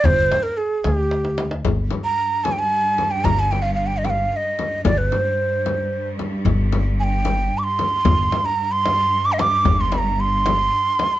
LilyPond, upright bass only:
\new Staff \with { instrumentName = "Upright bass" } { \clef bass \time 6/8 \tempo 4. = 75 g,,8 r4 d,4. | g,,8 r2 r8 | g,,2 r4 | g,,8 r2 r8 |
g,,2 r4 | g,,8 r2 r8 | g,,2 r4 | }